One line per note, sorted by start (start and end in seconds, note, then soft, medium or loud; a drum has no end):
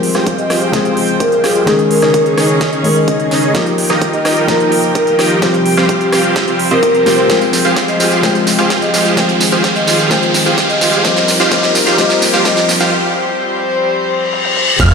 0.00 0.70 F3 medium
0.00 1.65 F3 medium
0.00 0.70 G#3 medium
0.00 3.51 G#3 medium
0.00 0.71 C4 medium
0.00 1.65 C4 medium
0.00 1.65 C5 medium
0.00 0.71 G5 medium
0.00 1.65 G5 medium
0.00 open hi-hat loud
0.00 riser medium
0.15 0.47 F4 medium
0.15 0.47 G4 medium
0.15 0.47 G#4 medium
0.15 0.47 C5 medium
0.15 0.47 F5 loud
0.15 cross-stick medium
0.15 snare soft
0.15 closed hi-hat soft
0.27 kick loud
0.27 closed hi-hat medium
0.38 0.56 D#5 medium
0.38 closed hi-hat soft
0.50 0.82 F4 medium
0.50 0.82 G4 medium
0.50 0.82 G#4 medium
0.50 0.82 C5 medium
0.50 0.82 F5 medium
0.50 cross-stick medium
0.50 snare soft
0.50 open hi-hat medium
0.62 closed hi-hat soft
0.72 1.64 F3 medium
0.72 1.64 G#3 medium
0.72 1.65 C4 medium
0.72 1.65 G#4 medium
0.72 kick loud
0.72 snare soft
0.72 closed hi-hat medium
0.85 0.97 F4 medium
0.85 0.97 G4 medium
0.85 0.97 G#4 medium
0.85 0.97 C5 medium
0.85 0.97 F5 medium
0.85 closed hi-hat soft
0.97 open hi-hat loud
1.09 closed hi-hat soft
1.20 1.39 F4 medium
1.20 1.39 G4 medium
1.20 1.39 G#4 medium
1.20 1.38 A#4 medium
1.20 1.39 C5 medium
1.20 1.39 F5 medium
1.20 kick loud
1.20 closed hi-hat medium
1.32 closed hi-hat soft
1.44 1.64 F4 medium
1.44 1.64 G4 medium
1.44 1.64 G#4 medium
1.44 1.51 G#4 medium
1.44 1.64 C5 medium
1.44 1.64 F5 medium
1.44 cross-stick medium
1.44 snare medium
1.44 open hi-hat medium
1.55 1.63 G#4 medium
1.55 closed hi-hat soft
1.66 2.81 D#3 medium
1.66 3.53 D#3 medium
1.66 2.81 G#3 medium
1.66 1.79 C#4 loud
1.66 3.53 C#4 medium
1.66 2.82 C#4 medium
1.66 1.79 D#4 medium
1.66 1.79 G#4 medium
1.66 3.53 G#4 medium
1.66 2.82 G#4 medium
1.66 1.79 C#5 medium
1.66 3.53 C#5 medium
1.66 1.79 D#5 loud
1.66 kick loud
1.66 snare medium
1.66 closed hi-hat medium
1.79 closed hi-hat soft
1.91 1.98 A#4 medium
1.91 open hi-hat loud
2.02 2.35 C#4 loud
2.02 2.35 D#4 medium
2.02 2.35 G#4 medium
2.02 2.10 A#4 medium
2.02 2.35 C#5 medium
2.02 2.35 D#5 loud
2.02 cross-stick medium
2.02 snare soft
2.02 closed hi-hat soft
2.14 kick loud
2.14 closed hi-hat medium
2.26 2.44 G#4 medium
2.26 closed hi-hat soft
2.37 2.70 C#4 medium
2.37 2.70 D#4 medium
2.37 2.70 G#4 medium
2.37 2.70 C#5 medium
2.37 2.70 D#5 medium
2.37 cross-stick medium
2.37 snare medium
2.37 open hi-hat medium
2.49 closed hi-hat soft
2.61 kick loud
2.61 snare medium
2.61 closed hi-hat medium
2.73 2.85 C#4 medium
2.73 2.85 D#4 medium
2.73 2.85 G#4 medium
2.73 2.85 C#5 medium
2.73 2.85 D#5 medium
2.73 closed hi-hat soft
2.83 3.51 D#3 medium
2.83 3.52 G#3 medium
2.83 3.52 C#4 medium
2.83 3.52 G#4 medium
2.83 2.94 A#4 medium
2.83 open hi-hat loud
2.96 3.59 D#5 medium
2.96 closed hi-hat soft
3.08 3.27 C#4 medium
3.08 3.27 D#4 medium
3.08 3.27 G#4 medium
3.08 3.27 C#5 medium
3.08 3.27 D#5 medium
3.08 kick loud
3.08 closed hi-hat medium
3.20 closed hi-hat soft
3.31 3.52 C#4 medium
3.31 3.52 D#4 medium
3.31 3.52 G#4 medium
3.31 3.52 C#5 medium
3.31 3.52 D#5 medium
3.31 snare medium
3.31 open hi-hat medium
3.43 closed hi-hat soft
3.53 4.45 F3 medium
3.53 9.13 F3 medium
3.53 4.45 A#3 medium
3.53 5.40 A#3 medium
3.53 3.67 D#4 medium
3.53 5.40 D#4 medium
3.53 4.46 D#4 medium
3.53 3.67 F4 medium
3.53 3.67 G4 medium
3.53 4.46 G4 medium
3.53 3.67 A#4 medium
3.53 5.40 A#4 medium
3.53 9.13 G5 medium
3.53 kick loud
3.53 snare medium
3.53 closed hi-hat medium
3.66 closed hi-hat soft
3.78 open hi-hat loud
3.90 4.22 D#4 loud
3.90 4.22 F4 medium
3.90 4.22 G4 medium
3.90 4.22 A#4 medium
3.90 4.22 D#5 loud
3.90 cross-stick medium
3.90 snare medium
3.90 closed hi-hat soft
4.02 kick loud
4.02 closed hi-hat medium
4.13 4.31 D#5 medium
4.13 closed hi-hat soft
4.25 4.57 D#4 medium
4.25 4.57 F4 medium
4.25 4.57 G4 medium
4.25 4.57 A#4 medium
4.25 4.57 D#5 medium
4.25 cross-stick medium
4.25 snare medium
4.25 open hi-hat loud
4.37 closed hi-hat soft
4.47 5.39 F3 medium
4.47 5.39 A#3 medium
4.47 5.40 D#4 medium
4.47 5.40 A#4 medium
4.47 kick loud
4.47 snare medium
4.47 closed hi-hat medium
4.60 4.72 D#4 medium
4.60 4.72 F4 medium
4.60 4.72 G4 medium
4.60 4.72 A#4 medium
4.60 4.72 D#5 medium
4.60 closed hi-hat soft
4.72 open hi-hat loud
4.84 closed hi-hat soft
4.95 5.14 D#4 medium
4.95 5.14 F4 medium
4.95 5.14 G4 medium
4.95 5.14 A#4 medium
4.95 5.13 A#4 medium
4.95 5.14 D#5 medium
4.95 kick loud
4.95 closed hi-hat medium
5.07 closed hi-hat soft
5.19 5.39 D#4 medium
5.19 5.39 F4 medium
5.19 5.39 G4 medium
5.19 5.26 G4 medium
5.19 5.39 A#4 medium
5.19 5.39 D#5 medium
5.19 cross-stick medium
5.19 snare medium
5.19 open hi-hat medium
5.30 5.38 G4 medium
5.30 closed hi-hat soft
5.41 6.56 C3 medium
5.41 6.56 F3 medium
5.41 6.57 G3 medium
5.41 7.28 G3 medium
5.41 5.54 C4 loud
5.41 9.13 C4 medium
5.41 6.57 C4 medium
5.41 5.54 F4 medium
5.41 5.54 G4 medium
5.41 6.57 G4 medium
5.41 5.54 C5 medium
5.41 9.13 C5 medium
5.41 5.54 F5 loud
5.41 kick loud
5.41 snare medium
5.41 closed hi-hat medium
5.54 closed hi-hat soft
5.66 5.84 G4 medium
5.66 open hi-hat loud
5.77 6.10 C4 loud
5.77 6.10 F4 medium
5.77 6.10 G4 medium
5.77 6.10 C5 medium
5.77 6.10 F5 loud
5.77 cross-stick medium
5.77 snare medium
5.77 closed hi-hat soft
5.89 5.97 G4 medium
5.89 kick loud
5.89 closed hi-hat medium
6.01 6.08 G4 medium
6.01 closed hi-hat soft
6.12 6.45 C4 medium
6.12 6.45 F4 medium
6.12 6.45 G4 medium
6.12 6.45 C5 medium
6.12 6.45 F5 medium
6.12 cross-stick medium
6.12 snare medium
6.12 open hi-hat medium
6.24 closed hi-hat soft
6.36 kick loud
6.36 snare medium
6.36 closed hi-hat medium
6.48 6.60 C4 medium
6.48 6.60 F4 medium
6.48 6.60 G4 medium
6.48 6.60 C5 medium
6.48 6.60 F5 medium
6.48 closed hi-hat soft
6.59 open hi-hat loud
6.71 6.80 C4 medium
6.71 6.80 F4 medium
6.71 6.80 G4 medium
6.71 7.30 A#4 medium
6.71 6.80 C5 medium
6.71 6.80 D#5 loud
6.71 closed hi-hat soft
6.83 7.03 C4 medium
6.83 7.03 F4 medium
6.83 7.03 G4 medium
6.83 7.03 C5 medium
6.83 7.03 A#5 loud
6.83 kick loud
6.83 closed hi-hat medium
6.95 closed hi-hat soft
7.06 7.27 F3 medium
7.06 7.27 G3 medium
7.06 7.27 C4 medium
7.06 7.27 F4 medium
7.06 7.27 G4 medium
7.06 7.27 C5 medium
7.06 7.27 G5 medium
7.06 snare medium
7.06 open hi-hat medium
7.18 closed hi-hat soft
7.28 8.20 F3 medium
7.28 8.20 G#3 medium
7.28 11.01 G#3 medium
7.28 8.21 C4 medium
7.28 7.42 F4 medium
7.28 7.42 G4 medium
7.28 7.42 G#4 medium
7.28 7.42 C5 medium
7.28 7.42 F5 loud
7.28 8.21 G5 medium
7.28 kick loud
7.28 snare medium
7.28 closed hi-hat medium
7.28 tambourine soft
7.41 closed hi-hat soft
7.41 tambourine soft
7.53 snare medium
7.53 open hi-hat loud
7.53 tambourine medium
7.65 7.97 F4 medium
7.65 7.97 G4 medium
7.65 7.97 G#4 medium
7.65 7.97 C5 medium
7.65 7.97 F5 loud
7.65 closed hi-hat soft
7.65 tambourine soft
7.76 kick loud
7.76 snare medium
7.76 closed hi-hat medium
7.76 tambourine soft
7.88 8.06 D#5 medium
7.88 closed hi-hat soft
7.88 tambourine soft
8.00 8.22 F4 medium
8.00 8.22 G4 medium
8.00 8.21 G#4 medium
8.00 8.21 C5 medium
8.00 8.21 F5 medium
8.00 snare medium
8.00 open hi-hat medium
8.00 tambourine medium
8.12 closed hi-hat soft
8.12 tambourine soft
8.22 9.14 F3 medium
8.22 9.14 G#3 medium
8.22 9.15 C4 medium
8.22 8.35 F4 medium
8.22 8.35 G4 medium
8.22 8.35 G#4 medium
8.22 8.35 C5 medium
8.22 8.35 F5 loud
8.22 9.15 G5 medium
8.22 kick loud
8.22 snare medium
8.22 closed hi-hat medium
8.22 tambourine soft
8.35 closed hi-hat soft
8.35 tambourine soft
8.47 snare medium
8.47 open hi-hat loud
8.47 tambourine medium
8.58 8.91 F4 medium
8.58 8.91 G4 medium
8.58 8.91 G#4 medium
8.58 8.91 C5 medium
8.58 8.91 F5 loud
8.58 closed hi-hat soft
8.58 tambourine soft
8.70 kick loud
8.70 snare medium
8.70 closed hi-hat medium
8.70 tambourine soft
8.82 9.00 D#5 medium
8.82 closed hi-hat soft
8.82 tambourine soft
8.94 9.15 F4 medium
8.94 9.15 G4 medium
8.94 9.15 G#4 medium
8.94 9.15 C5 medium
8.94 9.15 F5 medium
8.94 snare medium
8.94 open hi-hat medium
8.94 tambourine medium
9.05 closed hi-hat soft
9.05 tambourine soft
9.16 11.03 D#3 medium
9.16 10.07 F3 medium
9.16 10.08 G#3 medium
9.16 10.08 C4 medium
9.16 9.29 F4 medium
9.16 9.29 G4 medium
9.16 9.29 G#4 medium
9.16 9.29 C5 medium
9.16 9.29 F5 loud
9.16 10.09 G5 medium
9.16 kick loud
9.16 snare medium
9.16 closed hi-hat medium
9.16 tambourine soft
9.29 closed hi-hat soft
9.29 tambourine soft
9.41 snare medium
9.41 open hi-hat loud
9.41 tambourine medium
9.52 9.85 F4 medium
9.52 9.85 G4 medium
9.52 9.85 G#4 medium
9.52 9.85 C5 medium
9.52 9.85 F5 loud
9.52 tambourine soft
9.64 kick loud
9.64 snare medium
9.64 closed hi-hat medium
9.64 tambourine soft
9.76 9.94 D#5 medium
9.76 closed hi-hat soft
9.76 tambourine soft
9.87 10.09 F4 medium
9.87 10.09 G4 medium
9.87 10.09 G#4 medium
9.87 10.09 C5 medium
9.87 10.09 F5 medium
9.87 snare medium
9.87 open hi-hat medium
9.87 tambourine medium
9.99 closed hi-hat soft
9.99 tambourine soft
10.10 11.01 F3 medium
10.10 11.02 G#3 medium
10.10 11.02 C4 medium
10.10 10.23 F4 medium
10.10 11.02 G5 medium
10.10 kick loud
10.10 snare medium
10.10 closed hi-hat medium
10.10 tambourine soft
10.23 closed hi-hat soft
10.23 tambourine soft
10.34 snare medium
10.34 open hi-hat loud
10.34 tambourine medium
10.46 10.78 F4 loud
10.46 10.78 G4 medium
10.46 10.78 G#4 medium
10.46 10.78 C5 medium
10.46 10.78 F5 loud
10.46 closed hi-hat soft
10.46 tambourine soft
10.58 kick loud
10.58 snare medium
10.58 closed hi-hat medium
10.58 tambourine soft
10.69 10.88 D#5 medium
10.69 closed hi-hat soft
10.69 tambourine soft
10.81 11.03 F4 medium
10.81 11.03 G4 medium
10.81 11.03 G#4 medium
10.81 11.03 C5 medium
10.81 11.03 F5 medium
10.81 snare medium
10.81 open hi-hat medium
10.81 tambourine medium
10.93 closed hi-hat soft
10.93 tambourine soft
11.04 11.49 F3 medium
11.04 14.76 F3 medium
11.04 11.49 G3 medium
11.04 12.90 A#3 medium
11.04 11.50 C4 medium
11.04 12.90 D#4 medium
11.04 11.17 F4 medium
11.04 14.76 G4 medium
11.04 11.50 G4 medium
11.04 12.90 A#4 medium
11.04 11.23 D#5 medium
11.04 11.17 F5 loud
11.04 kick loud
11.04 snare medium
11.04 closed hi-hat medium
11.04 tambourine soft
11.16 snare medium
11.16 closed hi-hat soft
11.16 tambourine soft
11.28 snare medium
11.28 open hi-hat loud
11.28 tambourine medium
11.40 11.50 F4 loud
11.40 11.50 G4 medium
11.40 11.50 C5 medium
11.40 11.50 F5 loud
11.40 snare medium
11.40 closed hi-hat soft
11.40 tambourine soft
11.50 11.96 F3 medium
11.50 11.96 G3 medium
11.50 11.97 C4 medium
11.50 11.63 F4 loud
11.50 11.64 G4 medium
11.50 11.97 G4 medium
11.50 11.64 C5 medium
11.50 11.70 D#5 medium
11.50 11.63 F5 loud
11.50 kick loud
11.50 snare medium
11.50 closed hi-hat medium
11.50 tambourine soft
11.63 snare medium
11.63 closed hi-hat soft
11.63 tambourine soft
11.75 snare medium
11.75 open hi-hat medium
11.75 tambourine medium
11.87 11.97 F4 loud
11.87 11.97 G4 medium
11.87 11.97 C5 medium
11.87 11.97 F5 loud
11.87 snare medium
11.87 closed hi-hat soft
11.87 tambourine soft
11.97 12.43 F3 medium
11.97 12.43 G3 medium
11.97 12.44 C4 medium
11.97 12.10 F4 loud
11.97 12.44 G4 medium
11.97 12.10 C5 medium
11.97 12.17 D#5 medium
11.97 kick loud
11.97 snare loud
11.97 closed hi-hat medium
11.97 tambourine soft
12.10 snare medium
12.10 closed hi-hat soft
12.10 tambourine soft
12.22 snare loud
12.22 open hi-hat loud
12.22 tambourine medium
12.34 12.43 F4 loud
12.34 12.43 G4 medium
12.34 12.43 C5 medium
12.34 12.43 F5 loud
12.34 snare medium
12.34 closed hi-hat soft
12.34 tambourine soft
12.44 12.90 F3 medium
12.44 12.90 G3 medium
12.44 12.90 C4 medium
12.44 12.57 F4 medium
12.44 12.57 G4 medium
12.44 12.91 G4 medium
12.44 12.57 C5 medium
12.44 12.63 D#5 medium
12.44 12.57 F5 loud
12.44 kick loud
12.44 snare loud
12.44 closed hi-hat loud
12.44 tambourine soft
12.57 snare medium
12.57 closed hi-hat soft
12.57 tambourine soft
12.69 snare loud
12.69 open hi-hat medium
12.69 tambourine medium
12.80 12.90 F4 loud
12.80 12.90 G4 medium
12.80 12.90 C5 medium
12.80 12.90 F5 loud
12.80 snare medium
12.80 closed hi-hat soft
12.80 tambourine soft
12.92 14.78 G3 medium
12.92 14.78 C4 medium
12.92 14.78 C5 medium
13.86 reverse cymbal medium
14.33 high tom medium
14.45 high tom medium
14.56 mid tom medium
14.68 mid tom medium
14.80 14.94 F1 medium
14.80 14.94 C3 medium
14.80 14.94 G#3 medium
14.80 14.92 F4 loud
14.80 14.94 F4 medium
14.80 14.92 G4 medium
14.80 14.92 G#4 medium
14.80 14.92 C5 medium
14.80 14.92 F5 loud
14.80 14.94 G5 medium
14.80 14.92 F6 loud
14.80 kick loud
14.80 closed hi-hat medium
14.80 tambourine soft
14.80 crash loud
14.80 impact medium